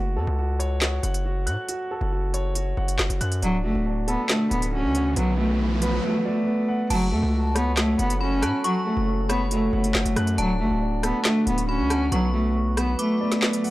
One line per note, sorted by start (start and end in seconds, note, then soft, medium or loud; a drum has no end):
0.00 0.18 F#1 loud
0.00 0.37 F#4 medium
0.16 0.27 F#2 loud
0.16 1.25 A4 medium
0.27 1.00 C#2 loud
0.39 0.81 F#4 medium
0.59 1.68 C#5 medium
0.59 closed hi-hat medium
0.81 1.24 F#4 medium
0.81 snare loud
0.81 clap medium
0.81 closed hi-hat loud
1.03 1.48 F#1 loud
1.03 2.12 F#5 medium
1.03 closed hi-hat medium
1.14 closed hi-hat medium
1.26 1.67 F#4 medium
1.47 1.57 A2 loud
1.47 2.55 F#6 medium
1.47 closed hi-hat medium
1.69 2.11 F#4 medium
1.69 closed hi-hat medium
1.91 2.99 A4 medium
2.01 2.74 F#1 loud
2.12 2.55 F#4 medium
2.34 3.43 C#5 medium
2.34 closed hi-hat medium
2.55 2.97 F#4 medium
2.55 closed hi-hat medium
2.77 2.98 F#1 loud
2.77 3.42 F#5 medium
2.88 closed hi-hat medium
2.98 3.09 F#1 loud
2.98 3.42 F#4 medium
2.98 snare loud
2.98 clap medium
3.10 3.20 F#1 loud
3.10 closed hi-hat medium
3.21 3.42 F#2 loud
3.21 3.42 F#6 medium
3.21 closed hi-hat medium
3.32 closed hi-hat medium
3.42 3.66 D1 loud
3.42 3.62 F#3 loud
3.42 3.85 D4 medium
3.42 closed hi-hat medium
3.42 riser medium
3.64 3.75 F#1 loud
3.64 3.84 A3 medium
3.64 4.71 F#4 medium
3.75 4.17 D1 loud
3.86 4.95 D4 medium
4.08 4.27 B3 medium
4.08 5.16 A4 medium
4.08 closed hi-hat medium
4.29 5.16 D3 medium
4.29 4.49 A3 loud
4.29 snare loud
4.29 clap medium
4.29 closed hi-hat loud
4.51 4.85 D1 loud
4.51 4.71 B3 medium
4.51 closed hi-hat medium
4.62 closed hi-hat medium
4.73 5.14 C#4 medium
4.73 5.16 F#4 medium
4.84 5.15 D2 loud
4.95 5.16 F#5 medium
4.95 closed hi-hat medium
5.16 6.00 B1 loud
5.16 5.36 F#3 loud
5.16 5.58 B3 medium
5.16 closed hi-hat medium
5.38 5.58 A3 medium
5.38 6.47 F#4 medium
5.59 6.02 B3 medium
5.82 6.01 B3 medium
5.82 6.90 B4 medium
5.82 closed hi-hat medium
6.03 6.23 A3 medium
6.03 6.45 B3 medium
6.25 6.86 A3 medium
6.25 6.90 D5 medium
6.47 6.90 B3 medium
6.68 6.90 F#5 medium
6.90 7.14 F#1 loud
6.90 10.35 F#3 medium
6.90 7.10 F#3 loud
6.90 10.35 C#4 medium
6.90 7.32 F#4 medium
6.90 10.35 A4 medium
6.90 7.73 A5 loud
6.90 closed hi-hat medium
6.90 crash loud
7.12 7.22 F#2 loud
7.12 7.32 A3 medium
7.12 8.21 A4 medium
7.23 7.96 C#2 loud
7.34 7.76 F#4 medium
7.55 7.75 B3 medium
7.55 8.64 C#5 loud
7.55 cross-stick medium
7.55 closed hi-hat medium
7.77 7.97 A3 loud
7.77 8.20 F#4 medium
7.77 snare loud
7.77 clap medium
7.77 closed hi-hat loud
7.99 8.44 F#1 loud
7.99 8.19 B3 medium
7.99 9.07 F#5 medium
7.99 closed hi-hat medium
8.10 closed hi-hat medium
8.21 8.62 C#4 medium
8.21 8.63 F#4 medium
8.21 8.41 B5 medium
8.42 8.53 A2 loud
8.42 8.63 A5 medium
8.42 9.51 F#6 medium
8.42 cross-stick medium
8.42 closed hi-hat medium
8.64 8.84 F#3 loud
8.64 9.06 F#4 medium
8.64 9.26 C#6 loud
8.64 closed hi-hat medium
8.86 9.05 A3 medium
8.86 9.95 A4 medium
8.97 9.70 F#1 loud
9.08 9.50 F#4 medium
9.29 9.49 B3 medium
9.29 10.38 C#5 loud
9.29 9.50 B5 medium
9.29 cross-stick medium
9.29 closed hi-hat medium
9.51 9.71 A3 medium
9.51 9.93 F#4 medium
9.51 closed hi-hat loud
9.73 9.94 F#1 loud
9.73 10.34 A3 medium
9.73 10.38 F#5 medium
9.84 closed hi-hat medium
9.94 10.05 F#1 loud
9.94 10.38 F#4 medium
9.94 snare loud
9.94 clap loud
10.05 10.16 F#1 loud
10.05 closed hi-hat medium
10.16 10.37 F#2 loud
10.16 10.38 F#6 medium
10.16 cross-stick medium
10.16 closed hi-hat medium
10.27 closed hi-hat medium
10.38 10.61 D1 loud
10.38 12.10 D3 medium
10.38 10.58 F#3 loud
10.38 12.10 A3 medium
10.38 10.80 D4 medium
10.38 12.10 F#4 loud
10.38 11.21 A5 loud
10.38 closed hi-hat medium
10.60 10.70 F#1 loud
10.60 10.80 A3 medium
10.60 11.67 F#4 medium
10.71 11.12 D1 loud
10.82 11.90 D4 medium
11.03 11.23 B3 medium
11.03 12.12 A4 loud
11.03 cross-stick medium
11.03 closed hi-hat medium
11.25 12.12 D3 medium
11.25 11.45 A3 loud
11.25 snare loud
11.25 clap medium
11.25 closed hi-hat loud
11.47 11.81 D1 loud
11.47 11.66 B3 medium
11.47 closed hi-hat medium
11.58 closed hi-hat medium
11.68 12.09 C#4 loud
11.68 12.12 F#4 medium
11.68 11.89 B5 medium
11.79 12.10 D2 loud
11.90 12.12 F#5 medium
11.90 12.11 A5 medium
11.90 cross-stick medium
11.90 closed hi-hat medium
12.12 12.95 B1 loud
12.12 12.32 F#3 loud
12.12 13.70 F#3 medium
12.12 12.54 B3 medium
12.12 13.70 B3 medium
12.12 13.70 D4 medium
12.12 12.73 C#6 medium
12.12 closed hi-hat medium
12.34 12.53 A3 medium
12.34 13.42 F#4 medium
12.55 12.98 B3 medium
12.77 12.97 B3 medium
12.77 13.70 B4 loud
12.77 12.98 B5 medium
12.77 cross-stick medium
12.77 closed hi-hat medium
12.99 13.18 A3 medium
12.99 13.41 B3 medium
12.99 13.70 D6 medium
12.99 closed hi-hat loud
13.21 13.70 A3 medium
13.21 13.70 D5 medium
13.32 snare medium
13.32 closed hi-hat medium
13.42 13.70 B3 medium
13.42 snare loud
13.42 clap medium
13.53 closed hi-hat medium
13.64 13.70 F#5 medium
13.64 open hi-hat medium